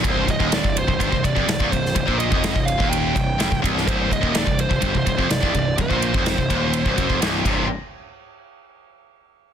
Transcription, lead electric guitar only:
\new Staff \with { instrumentName = "Lead electric guitar" } { \time 4/4 \key c \minor \tempo 4 = 126 c''8 ees''8 d''8 c''8 c''8 d''4 c''8 | c''8 ees''4 f''8 g''4. r8 | c''8 ees''8 d''8 c''8. c''8. d''4 | c''2. r4 |
r1 | }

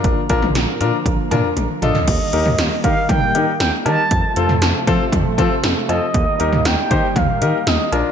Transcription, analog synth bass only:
\new Staff \with { instrumentName = "Analog synth bass" } { \clef bass \time 4/4 \key ees \lydian \tempo 4 = 118 bes,,16 r16 bes,,16 bes,,16 bes,,16 r16 bes,16 r16 bes,,16 r16 bes,16 r16 bes,,16 r16 bes,,16 r16 | ees,16 r16 ees,16 ees,16 ees,16 r16 ees16 r16 ees,16 r16 ees16 r16 ees,16 r16 ees16 r16 | f,16 r16 f,16 f,16 f,16 r16 f16 r16 f,16 r16 f16 r16 f,16 r16 f,16 r16 | ees,16 r16 ees,16 ees,16 ees,16 r16 ees16 r16 ees,16 r16 ees16 r16 ees,16 r16 bes,,16 r16 | }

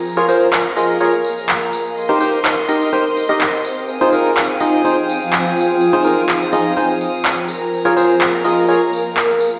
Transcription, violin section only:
\new Staff \with { instrumentName = "Violin section" } { \time 4/4 \key f \minor \tempo 4 = 125 <aes' bes' bes''>1 | <bes' ees'' c'''>1 | <aes' f'' ees'''>1~ | <aes' f'' ees'''>2.~ <aes' f'' ees'''>8 <aes' bes' bes''>8~ |
<aes' bes' bes''>1 | }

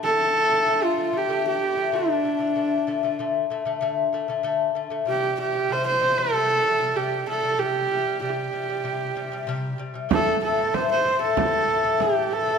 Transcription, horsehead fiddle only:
\new Staff \with { instrumentName = "Horsehead fiddle" } { \time 4/4 \tempo 4 = 95 a'4~ a'16 f'8 g'8 g'8. d'4~ | d'4 r2. | g'8 g'8 c''16 c''8 a'4~ a'16 g'8 a'8 | g'4 g'2~ g'8 r8 |
a'8 a'8 c''16 c''8 a'4~ a'16 g'8 a'8 | }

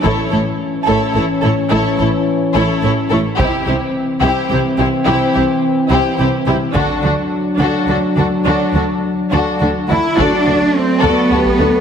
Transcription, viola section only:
\new Staff \with { instrumentName = "Viola section" } { \time 6/8 \key d \mixolydian \tempo 4. = 71 e'8 e'8 r8 e'8 e'8 e'8 | e'8 e'8 r8 e'8 e'8 e'8 | e'8 e'8 r8 e'8 e'8 e'8 | e'8 e'8 r8 e'8 e'8 e'8 |
d'8 d'8 r8 d'8 d'8 d'8 | d'8 d'8 r8 d'8 d'8 d'8 | fis'8 fis'8 r8 fis'8 fis'8 fis'8 | }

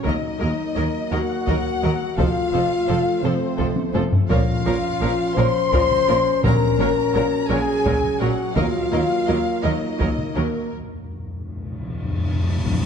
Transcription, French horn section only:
\new Staff \with { instrumentName = "French horn section" } { \time 6/8 \key ees \dorian \tempo 4. = 56 ees'4. ges'4. | f'4. c'4 r8 | f'4. c''4. | bes'4. aes'4 ges'8 |
f'4. ees'4 bes8 | r2. | }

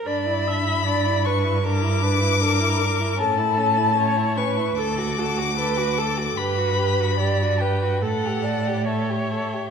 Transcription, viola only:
\new Staff \with { instrumentName = "Viola" } { \time 4/4 \key a \mixolydian \tempo 4 = 75 d''8 e''8 d''8 b'8 bes'8 b'8 bes'4 | a'4 cis''8 b'8 a'8 fis'8 b'8 a'8 | b'4 d''8 b'8 a'8 d''8 cis''4 | }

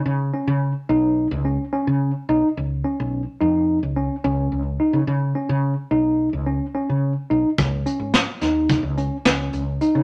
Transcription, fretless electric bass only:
\new Staff \with { instrumentName = "Fretless electric bass" } { \clef bass \time 9/8 \key des \mixolydian \tempo 4. = 72 des8 r16 des8 r16 ces,8. des,8 r8 des8 r16 ces,16 r16 | des,8 r16 ces,8 r16 f,8. des,8 r16 des,8 des,8 r16 des16 | des8 r16 des8 r16 ces,8. des,8 r8 des8 r16 ces,16 r16 | des,8 r16 aes,,8 r16 ees,8. des,8 r16 des,8 des,8 r16 des16 | }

